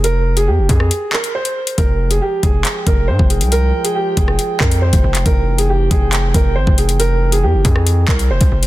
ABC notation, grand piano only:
X:1
M:4/4
L:1/16
Q:1/4=138
K:Fm
V:1 name="Grand piano"
B3 A G2 A4 B2 c4 | B3 A G2 A4 B2 c2 A2 | B3 A G2 A4 B2 c4 | B3 A G2 A4 B2 c2 A2 |
B3 A G2 A4 B2 c4 |]